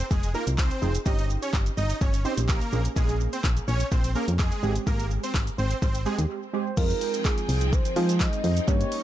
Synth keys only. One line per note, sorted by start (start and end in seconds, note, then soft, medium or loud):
0.34 0.67 D#4 medium
0.34 0.67 F4 medium
0.34 0.68 A#4 medium
0.82 0.99 D#4 medium
0.82 0.99 F4 medium
0.82 0.99 G#4 medium
1.06 1.71 C#4 medium
1.06 1.71 D#4 medium
1.06 1.71 G4 medium
2.25 2.58 C#4 medium
2.25 2.58 D#4 medium
2.25 2.58 G4 medium
2.72 3.49 A#3 medium
2.72 3.49 C#4 medium
2.72 3.49 G#4 medium
4.15 4.48 A#3 medium
4.15 4.48 C#4 medium
4.15 4.48 G#4 medium
4.63 5.39 G#3 medium
4.63 5.39 C4 medium
4.63 5.40 G4 medium
6.06 6.39 G#3 medium
6.06 6.39 C4 medium
6.06 6.39 G4 medium
6.53 6.70 G#3 medium
6.53 6.70 C4 medium
6.53 6.70 G4 medium
6.77 7.42 G#3 medium
6.77 7.43 C4 medium
6.77 7.43 D#4 medium
6.77 7.43 F4 medium
7.96 8.45 G#3 medium
7.96 8.45 C4 medium
7.96 8.45 D#4 medium
7.96 8.45 G#4 medium
8.68 9.03 A#3 medium
8.68 9.03 C#4 medium
8.68 9.03 D#4 medium
8.68 9.03 G4 medium